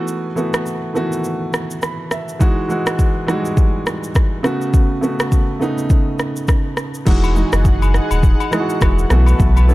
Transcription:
0.00 0.26 E3 medium
0.00 0.27 A3 medium
0.00 0.27 B3 medium
0.00 0.28 F#4 loud
0.08 shaker medium
0.35 0.75 E3 medium
0.35 0.75 A3 medium
0.35 0.76 B3 medium
0.35 0.76 F#4 medium
0.35 shaker medium
0.54 cross-stick loud
0.54 shaker medium
0.66 shaker medium
0.94 1.02 D#3 medium
0.94 1.72 A3 medium
0.94 1.72 B3 medium
0.94 1.73 F#4 loud
0.94 shaker soft
1.00 1.75 E3 medium
1.12 shaker medium
1.24 shaker medium
1.53 cross-stick loud
1.53 shaker medium
1.71 shaker medium
1.82 2.09 B5 medium
1.82 cross-stick medium
1.82 shaker medium
2.11 2.39 E5 medium
2.11 cross-stick medium
2.11 shaker medium
2.28 shaker medium
2.39 2.60 E3 medium
2.39 2.61 G#3 medium
2.39 2.61 D#4 medium
2.39 2.62 F#4 loud
2.39 kick loud
2.39 shaker medium
2.68 3.08 E3 medium
2.68 3.08 G#3 medium
2.68 3.09 D#4 medium
2.68 3.09 F#4 medium
2.68 shaker medium
2.86 cross-stick loud
2.86 shaker medium
2.99 kick medium
2.99 shaker medium
3.27 4.04 E3 medium
3.27 3.35 G3 medium
3.27 4.05 D#4 medium
3.27 4.06 F#4 loud
3.27 cross-stick medium
3.27 shaker soft
3.34 4.08 G#3 medium
3.45 shaker medium
3.57 kick loud
3.57 shaker medium
3.86 cross-stick loud
3.86 shaker medium
4.04 shaker medium
4.15 kick medium
4.15 cross-stick medium
4.15 shaker medium
4.43 4.92 C#3 medium
4.43 4.93 A3 medium
4.43 4.93 B3 medium
4.43 4.94 F#4 loud
4.43 cross-stick medium
4.43 shaker medium
4.61 shaker medium
4.74 kick loud
4.74 shaker medium
5.01 5.41 C#3 medium
5.01 5.41 A3 medium
5.01 5.42 B3 medium
5.01 5.42 F#4 medium
5.01 shaker medium
5.20 cross-stick loud
5.20 shaker medium
5.32 kick medium
5.32 shaker medium
5.60 6.38 C#3 medium
5.60 6.38 A3 medium
5.60 6.38 B3 medium
5.60 6.39 D#4 loud
5.60 shaker soft
5.78 shaker medium
5.90 kick loud
5.90 shaker medium
6.19 cross-stick medium
6.19 shaker medium
6.36 shaker medium
6.48 kick medium
6.48 cross-stick medium
6.48 shaker medium
6.77 cross-stick medium
6.77 shaker medium
6.94 shaker medium
7.05 7.44 E1 loud
7.05 7.26 E3 medium
7.05 7.27 G#3 medium
7.05 9.09 D#4 medium
7.05 7.27 D#4 medium
7.05 7.28 F#4 medium
7.05 9.09 G#4 medium
7.05 9.09 F#5 medium
7.05 kick loud
7.05 crash loud
7.05 shaker medium
7.24 high agogo medium
7.24 shaker soft
7.34 8.12 E3 medium
7.34 8.13 G#3 medium
7.34 8.13 D#4 medium
7.34 8.14 F#4 medium
7.34 shaker medium
7.52 8.00 F#1 medium
7.52 cross-stick loud
7.52 shaker medium
7.65 kick medium
7.65 shaker medium
7.82 high agogo medium
7.82 shaker medium
7.94 cross-stick medium
7.94 shaker soft
8.11 8.34 D#1 medium
8.11 high agogo medium
8.11 shaker medium
8.23 kick loud
8.23 shaker medium
8.40 high agogo medium
8.40 shaker soft
8.51 9.08 E3 medium
8.51 9.09 G#3 medium
8.51 9.09 D#4 medium
8.51 8.60 E4 medium
8.51 cross-stick loud
8.51 shaker medium
8.60 9.10 F#4 medium
8.70 shaker medium
8.81 9.05 E1 medium
8.81 kick medium
8.81 cross-stick loud
8.81 high agogo medium
8.81 shaker medium
8.99 shaker medium
9.09 9.34 B1 loud
9.09 9.58 E3 medium
9.09 9.59 A3 medium
9.09 9.59 B3 medium
9.09 9.74 E4 medium
9.09 9.60 F#4 loud
9.09 9.74 B4 medium
9.09 9.74 A5 medium
9.09 cross-stick loud
9.09 shaker medium
9.26 high agogo medium
9.26 shaker medium
9.40 9.74 B1 loud
9.40 kick loud
9.40 shaker medium
9.57 high agogo medium
9.57 shaker soft
9.68 9.74 E3 medium
9.68 9.74 A3 medium
9.68 9.74 B3 medium
9.68 9.74 C#4 medium
9.68 shaker medium

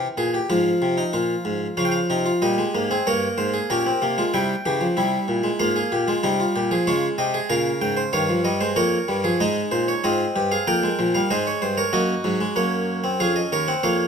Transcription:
0.00 0.46 E3 medium
0.17 0.37 A#2 medium
0.17 0.33 G#4 medium
0.34 0.49 G4 medium
0.50 0.70 G#2 medium
0.50 1.74 F3 medium
0.50 0.96 F4 medium
0.82 1.02 C3 medium
0.98 1.13 D#4 medium
1.13 1.33 A#2 medium
1.13 1.76 F4 medium
1.45 1.65 G#2 medium
1.77 1.98 C#3 medium
1.77 2.40 F3 medium
1.77 1.97 C#4 medium
1.77 1.84 F5 medium
1.85 1.92 G5 soft
1.92 2.41 F5 medium
2.10 2.30 C3 medium
2.10 2.26 D#4 medium
2.26 2.41 F4 medium
2.42 2.62 A#2 medium
2.42 2.58 G3 medium
2.42 2.89 G4 medium
2.42 3.04 D#5 medium
2.58 2.74 G#3 medium
2.75 2.94 G#2 medium
2.75 2.90 A#3 medium
2.91 3.06 C4 medium
2.91 3.06 G#4 medium
3.07 3.26 G2 medium
3.07 3.68 A#3 medium
3.07 3.53 A#4 medium
3.07 3.26 C#5 medium
3.38 3.58 G#2 medium
3.38 3.58 C5 medium
3.54 3.69 G#4 medium
3.70 3.90 A#2 medium
3.70 3.85 C#4 medium
3.70 4.16 G4 medium
3.70 4.32 A#4 medium
3.86 4.01 C4 medium
4.02 4.22 C3 medium
4.02 4.17 A#3 medium
4.18 4.33 G#3 medium
4.18 4.33 F4 medium
4.34 4.53 C3 medium
4.34 4.53 G3 medium
4.34 4.53 E4 medium
4.34 5.57 G5 medium
4.65 4.85 C#3 medium
4.65 4.81 E3 medium
4.65 4.85 G4 medium
4.81 4.96 F3 medium
4.97 5.17 C3 medium
4.97 5.43 G3 medium
4.97 5.59 E4 medium
5.28 5.48 A#2 medium
5.43 5.59 G#3 medium
5.59 5.80 G#2 medium
5.59 6.06 A#3 medium
5.59 5.76 F4 medium
5.59 6.83 F5 medium
5.76 5.92 G#4 medium
5.92 6.12 A#2 medium
5.92 6.08 G4 medium
6.08 6.23 G#3 medium
6.08 6.23 F4 medium
6.23 6.43 C3 medium
6.23 6.70 G3 medium
6.23 6.39 D#4 medium
6.40 6.55 F4 medium
6.56 6.75 A#2 medium
6.56 6.71 G4 medium
6.71 6.87 F3 medium
6.71 6.87 G#4 medium
6.87 7.07 C#3 medium
6.87 7.49 G#3 medium
6.87 7.07 F4 medium
6.87 7.07 C#5 medium
7.18 7.38 C3 medium
7.18 7.34 G4 medium
7.18 7.38 D#5 medium
7.34 7.50 G#4 medium
7.50 7.69 A#2 medium
7.50 8.11 C#3 medium
7.50 7.96 A#4 medium
7.50 7.69 F5 medium
7.81 8.01 G#2 medium
7.81 8.01 G5 medium
7.97 8.13 C5 medium
8.13 8.74 G2 medium
8.13 8.29 D#3 medium
8.13 8.59 C#5 medium
8.13 8.33 F5 medium
8.29 8.45 F3 medium
8.45 8.60 G3 medium
8.45 8.64 D#5 medium
8.61 8.76 G#3 medium
8.61 8.76 C5 medium
8.76 8.96 F2 medium
8.76 8.96 A#3 medium
8.76 9.23 A#4 medium
8.76 9.38 C#5 medium
9.08 9.28 G2 medium
9.08 9.24 G3 medium
9.24 9.39 F3 medium
9.24 9.39 G#4 medium
9.40 9.60 G#2 medium
9.40 10.01 G#3 medium
9.40 10.01 D#4 medium
9.40 9.60 D#5 medium
9.71 9.91 A#2 medium
9.71 9.87 C5 medium
9.88 10.03 C#5 medium
10.04 10.23 G#2 medium
10.04 10.65 C4 medium
10.04 10.24 F4 medium
10.04 10.50 D#5 medium
10.36 10.55 G2 medium
10.36 10.51 G4 medium
10.52 10.67 G#4 medium
10.52 10.66 F5 medium
10.67 10.87 F2 medium
10.67 10.82 A#3 medium
10.67 11.29 A#4 medium
10.67 11.13 G5 medium
10.83 10.98 G#3 medium
10.99 11.18 A#2 medium
10.99 11.14 F3 medium
11.15 11.30 G3 medium
11.15 11.30 F5 medium
11.30 11.50 G#2 medium
11.30 11.91 G#3 medium
11.30 11.46 C5 medium
11.30 11.76 D#5 medium
11.47 11.62 C#5 medium
11.62 11.82 G2 medium
11.62 11.77 C5 medium
11.78 11.93 A#4 medium
11.78 11.93 C#5 medium
11.93 12.13 F#2 medium
11.93 12.12 A#3 medium
11.93 13.16 F#4 medium
11.93 12.54 D#5 medium
12.24 12.44 G#2 medium
12.24 12.40 F#3 medium
12.41 12.56 G#3 medium
12.56 13.17 F#2 medium
12.56 13.02 A#3 medium
12.56 13.18 C#5 medium
13.04 13.19 C4 medium
13.20 13.40 F2 medium
13.20 13.66 C#4 medium
13.20 13.40 G#4 medium
13.20 13.35 F5 medium
13.36 13.51 D#5 medium
13.52 13.72 D#2 medium
13.52 13.72 A#4 medium
13.52 13.67 C#5 medium
13.68 13.83 C4 medium
13.68 13.83 F#5 medium
13.83 14.03 F2 medium
13.83 14.07 A#3 medium
13.83 14.07 C#5 medium
13.83 14.03 F5 medium

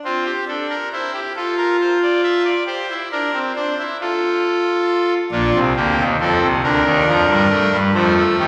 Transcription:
0.04 0.31 C4 medium
0.04 0.23 F4 medium
0.25 0.44 G4 medium
0.48 0.75 D4 medium
0.48 0.67 A4 medium
0.70 0.89 A#4 medium
0.93 1.20 E4 medium
0.93 1.11 C5 medium
1.13 1.32 G4 medium
1.36 2.49 F4 medium
1.36 1.55 A4 medium
1.58 1.76 A#4 medium
1.81 1.99 C5 medium
2.03 2.21 D5 medium
2.23 2.42 E5 medium
2.45 2.64 D5 medium
2.66 2.86 G4 medium
2.66 2.94 C5 medium
2.90 3.08 E4 medium
3.12 3.31 D4 medium
3.12 3.39 A#4 medium
3.33 3.52 C4 medium
3.55 3.74 D4 medium
3.55 3.83 C5 medium
3.79 3.97 E4 medium
4.01 5.13 F4 medium
4.01 5.14 A4 medium
5.31 5.51 A#1 medium
5.31 5.50 A#2 medium
5.31 5.58 D4 medium
5.31 5.59 F4 medium
5.54 5.73 C2 medium
5.54 5.73 C3 medium
5.76 5.95 D2 medium
5.76 5.95 D3 medium
5.76 6.03 A#3 medium
5.76 6.03 G4 medium
5.97 6.16 D#2 medium
5.97 6.16 D#3 medium
6.20 6.38 F2 medium
6.20 6.38 F3 medium
6.20 6.47 C4 medium
6.20 6.47 A4 medium
6.42 6.60 C2 medium
6.42 6.60 C3 medium
6.63 6.82 D2 medium
6.63 6.82 D3 medium
6.63 7.77 D4 medium
6.63 7.77 A#4 medium
6.85 7.04 D#2 medium
6.85 7.04 D#3 medium
7.07 7.26 F2 medium
7.07 7.26 F3 medium
7.29 7.48 G2 medium
7.29 7.48 G3 medium
7.50 7.69 A3 medium
7.72 7.92 G2 medium
7.72 7.91 G3 medium
7.94 8.22 F2 medium
7.94 8.22 F3 loud
7.94 8.48 A3 medium
7.94 8.14 C5 medium
8.17 8.36 A4 medium
8.39 8.48 D#2 medium
8.39 8.48 D#3 medium
8.39 8.48 G4 medium

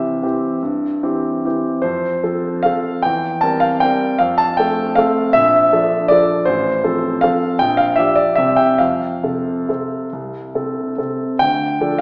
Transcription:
0.00 0.25 C2 soft
0.00 0.19 E3 soft
0.00 0.19 C4 soft
0.00 0.19 G4 soft
0.00 1.64 E5 medium
0.23 0.60 E3 soft
0.23 0.60 C4 soft
0.23 0.60 G4 soft
0.63 1.02 G2 soft
1.03 1.40 E3 soft
1.03 1.41 C4 soft
1.03 1.41 G4 soft
1.45 1.81 E3 soft
1.45 1.81 C4 soft
1.45 1.81 G4 soft
1.82 2.23 F2 soft
1.82 2.63 C5 medium
2.23 2.60 F3 soft
2.23 2.60 C4 soft
2.23 2.60 A4 soft
2.63 3.01 F3 soft
2.63 3.01 C4 soft
2.63 3.01 A4 soft
2.63 3.04 F5 medium
3.02 3.42 E2 soft
3.02 3.42 G5 medium
3.41 3.79 G3 soft
3.41 3.79 C4 soft
3.41 3.79 A#4 soft
3.41 3.62 A5 medium
3.60 3.81 F5 medium
3.80 4.17 G3 soft
3.80 4.17 C4 soft
3.80 4.17 A#4 soft
3.80 4.20 G5 medium
4.19 4.57 F2 soft
4.19 4.39 F5 medium
4.38 4.58 A5 medium
4.57 4.93 A3 soft
4.57 4.94 C4 soft
4.57 4.94 A4 soft
4.57 4.96 G5 medium
4.95 5.31 A3 soft
4.95 5.32 C4 soft
4.95 5.32 A4 soft
4.95 5.34 F5 medium
5.33 5.71 A#1 soft
5.33 6.10 E5 medium
5.73 6.07 F3 soft
5.73 6.07 D4 soft
5.73 6.07 A4 soft
6.08 6.44 F3 soft
6.08 6.45 D4 soft
6.08 6.45 A4 soft
6.08 6.47 D5 medium
6.45 6.83 A1 soft
6.45 7.22 C5 medium
6.83 7.19 F3 soft
6.83 7.19 C4 soft
6.83 7.19 A4 soft
7.21 7.57 F3 soft
7.21 7.57 C4 soft
7.21 7.57 A4 soft
7.21 7.60 F5 medium
7.59 7.97 A#1 soft
7.59 7.78 G5 medium
7.77 7.97 F5 medium
7.96 8.34 F3 soft
7.96 8.34 D4 soft
7.96 8.34 G4 soft
7.96 8.16 E5 medium
8.15 8.37 D5 medium
8.35 8.79 C2 soft
8.35 8.76 C3 soft
8.35 8.76 C4 soft
8.35 8.77 G4 soft
8.35 8.58 E5 medium
8.56 8.79 G5 medium
8.78 9.22 F2 soft
8.78 10.98 F5 medium
9.23 9.64 C3 soft
9.23 9.65 C4 soft
9.23 9.65 A4 soft
9.69 10.09 C3 soft
9.69 10.09 C4 soft
9.69 10.09 A4 soft
10.13 10.54 C2 soft
10.55 10.94 C3 soft
10.55 10.94 C4 soft
10.55 10.94 A4 soft
10.98 11.37 C3 soft
10.98 11.37 C4 soft
10.98 11.37 A4 soft
11.39 11.80 D2 soft
11.39 12.01 G5 medium
11.80 12.01 F3 soft
11.80 12.01 D4 soft
11.80 12.01 A4 soft

